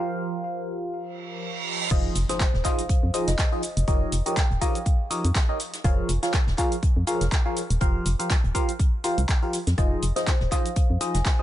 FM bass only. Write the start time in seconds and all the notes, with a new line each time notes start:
1.91 F1
2.16 F1
2.54 D#1
3.03 F2
3.28 F1
3.77 F1
3.88 F1
4.12 F1
4.51 D#1
5.24 F2
5.84 F1
6.09 F1
6.47 D#1
6.97 F2
7.21 F1
7.70 D#1
7.81 F1
8.06 F1
8.44 D#1
9.18 C2
9.67 F2
9.78 F1
10.03 F1
10.41 D#1
10.90 F2
11.15 F1